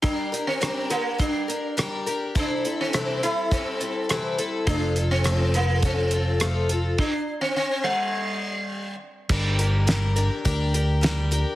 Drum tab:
CC |--------|--------|--------|x-------|
HH |xxxxxxxx|xxxxxxxx|xxxxxxxx|--------|
SD |--r---r-|--r---r-|--r---r-|--------|
BD |o---o---|o---o---|o---o---|o-------|

CC |x-------|
HH |-xxxxxxx|
SD |--o---o-|
BD |o---o---|